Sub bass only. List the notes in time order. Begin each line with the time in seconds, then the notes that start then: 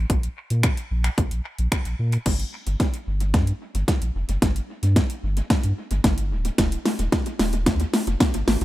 0.10 A#1
0.50 A#2
0.91 A#1
1.18 C2
1.32 A#1
1.59 A#1
1.72 A#1
1.86 A#1
1.99 A#2
2.26 G1
2.67 G1
3.07 G1
3.34 G2
3.75 G1
4.02 A#1
4.15 F1
4.29 F#1
4.42 G1
4.83 G2
5.23 G1
5.50 G2
5.64 G2
5.91 G1
6.04 G1
6.31 D1
6.58 D#1
6.99 D#1
7.39 D#1
7.66 D#2
8.07 F1
8.34 G1
8.47 G#1
8.61 A1